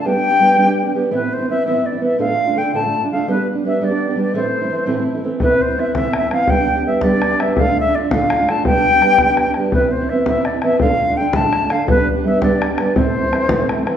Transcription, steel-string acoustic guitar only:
\new Staff \with { instrumentName = "Steel-string acoustic guitar" } { \time 6/8 \key a \minor \tempo 4. = 111 <g b d' g'>16 <b d' g'>8 <b d' g'>16 <g b d' g'>8 <g b d' g'>16 <b d' g'>8 <b d' g'>16 <g b d' g'>8 | <a, e b c' e'>16 <b c' e'>8 <b c' e'>16 <e b c' e'>8 <a, e b c' e'>16 <b c' e'>8 <b c' e'>16 <e b c' e'>8 | <d, a, d a d' f'>16 <d a d' f'>8 <d a d' f'>16 <d a d' f'>8 <d, a, d a d' f'>16 <d a d' f'>8 <d a d' f'>16 <d a d' f'>8 | <g b d' g'>16 <d' g'>8 <b d' g'>16 <g b d' g'>8 <g b d' g'>16 <b d' g'>8 <b d' g'>16 <g b d' g'>8 |
<a, e a c' e'>16 <a c' e'>8 <a c' e'>16 <e a c' e'>8 <a, e a c' e'>16 <a c' e'>8 <a c' e'>16 <e a c' e'>8 | <a, e b c' e'>16 <b c' e'>8 <b c' e'>16 <e b c' e'>8 <a, e b c' e'>16 <b c' e'>8 <b c' e'>16 <e b c' e'>8 | <g b d' g'>16 <b d' g'>8 <b d' g'>16 <g b d' g'>8 <g b d' g'>16 <b d' g'>8 <b d' g'>16 <g b d' g'>8 | <d, a, d a d' f'>16 <d a d' f'>8 <d a d' f'>16 <d a d' f'>8 <d, a, d a d' f'>16 <d a d' f'>8 <d a d' f'>16 <d a d' f'>8 |
<g b d' g'>16 <b d' g'>8 <b d' g'>16 <g b d' g'>8 <g b d' g'>16 <b d' g'>8 <b d' g'>16 <g b d' g'>8 | <a, e b c' e'>16 <b c' e'>8 <b c' e'>16 <e b c' e'>8 <a, e b c' e'>16 <b c' e'>8 <b c' e'>16 <e b c' e'>8 | <d, a, d a d' f'>16 <d a d' f'>8 <d a d' f'>16 <d a d' f'>8 <d, a, d a d' f'>16 <d a d' f'>8 <d a d' f'>16 <d a d' f'>8 | <g b d' g'>16 <d' g'>8 <b d' g'>16 <g b d' g'>8 <g b d' g'>16 <b d' g'>8 <b d' g'>16 <g b d' g'>8 |
<a, e a c' e'>16 <a c' e'>8 <a c' e'>16 <e a c' e'>8 <a, e a c' e'>16 <a c' e'>8 <a c' e'>16 <e a c' e'>8 | }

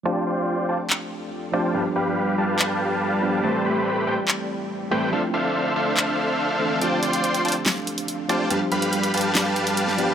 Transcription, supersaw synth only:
\new Staff \with { instrumentName = "Supersaw synth" } { \time 4/4 \key f \lydian \tempo 4 = 142 <f' c'' d'' g'' a''>8 <f' c'' d'' g'' c'''>4 <f' c'' d'' g'' a''>8 r4. <f' c'' d'' g'' a''>8 | <g g' b' f'' a''>8 <g g' b' f'' b''>4 <g g' b' f'' a''>2~ <g g' b' f'' a''>8 | <a g' b' c'' a''>8 <a g' b' c'' b''>4 <a g' b' c'' g''>8 r4. <a g' b' c'' g''>8 | <d' a' c'' e'' f''>8 <d' a' c'' e'' f''>4 <d' a' c'' e'' f''>2~ <d' a' c'' e'' f''>8 |
<f' c'' d'' g'' a''>8 <f' c'' d'' g'' c'''>4 <f' c'' d'' g'' a''>8 r4. <f' c'' d'' g'' a''>8 | <g g' b' f'' a''>8 <g g' b' f'' b''>4 <g g' b' f'' a''>2~ <g g' b' f'' a''>8 | }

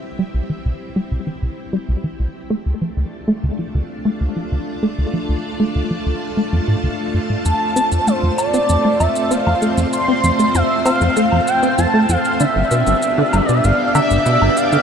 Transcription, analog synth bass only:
\new Staff \with { instrumentName = "Analog synth bass" } { \clef bass \time 4/4 \key d \dorian \tempo 4 = 97 r16 g16 c,16 e16 c,16 r16 g16 c,16 e16 c,16 r16 g16 c,16 e16 c,16 r16 | a16 d,16 f16 d,16 r16 a16 d,16 f16 d,16 r16 a16 d,16 f16 d,16 r16 a16 | d,16 f16 d,16 r16 a16 d,16 f16 d,16 r16 a16 f,16 a,16 d,16 r16 g,16 a,16 | f,16 r16 c'16 f,16 a16 f,16 r16 c'16 f,16 a16 f,16 r16 c'16 f,16 a16 f,16 |
r16 c'16 f,16 a16 f,16 r16 c'16 f,16 a16 f,16 r16 c'16 f,16 a16 f,16 r16 | d16 g,,16 b,16 g,,16 r16 d16 g,,16 b,16 g,,16 r16 d16 g,,16 b,16 g,,16 r16 d16 | }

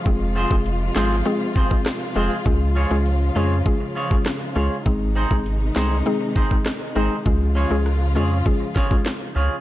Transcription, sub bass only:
\new Staff \with { instrumentName = "Sub bass" } { \clef bass \time 4/4 \key des \lydian \tempo 4 = 100 f,,8. f,,8. aes,,8 r4. f,,16 r16 | des,8. des,8. f,8 r4. des,16 r16 | aes,,8. aes,,8. c,8 r4. aes,,16 r16 | des,8. des,8. f,8 r4. des,16 r16 | }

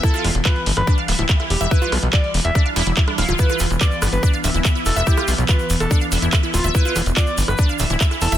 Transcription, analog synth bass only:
\new Staff \with { instrumentName = "Analog synth bass" } { \clef bass \time 4/4 \key e \phrygian \tempo 4 = 143 r8 e,,16 e,,16 r8 g,,16 g,,16 r8 d,,16 d,,16 r8 e,,16 e,,16 | r8 b,,16 b,,16 r8 e,,16 e,,16 r8 e,,16 e,,16 r8 d,,16 d,,16 | r8 e,,16 e,,16 r8 g,,16 g,,16 r8 d,,16 d,,16 r8 e,,16 e,,16 | r8 b,,16 b,,16 r8 e,,16 e,,16 r8 e,,16 e,,16 r8 d,,16 d,,16 |
r8 e,,16 e,,16 r8 g,,16 g,,16 r8 d,,16 d,,16 r8 e,,16 e,,16 | }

